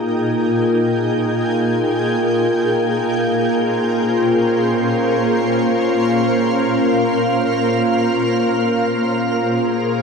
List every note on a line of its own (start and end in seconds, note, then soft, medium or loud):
0.00 10.02 A#2 medium
0.00 10.02 A#3 medium
0.00 3.65 D#4 medium
0.00 10.02 F4 medium
0.00 4.95 G#4 medium
0.00 4.81 G5 medium
3.00 10.02 C5 medium
3.49 8.58 C#4 medium
4.91 10.02 F5 medium
9.07 10.02 G#4 medium
9.76 10.02 D#4 medium